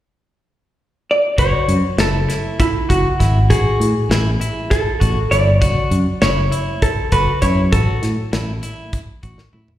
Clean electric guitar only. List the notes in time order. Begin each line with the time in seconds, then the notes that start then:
1.38 F#4
1.99 E4
2.28 E4
2.89 F#4
3.20 E4
3.50 F#4
4.11 E4
4.41 E4
5.00 F#4
5.31 E4
5.61 F#4
6.22 E4
6.52 E4
7.12 F#4
7.42 E4
7.72 F#4
8.33 E4
8.63 E4
9.23 F#4
9.53 E4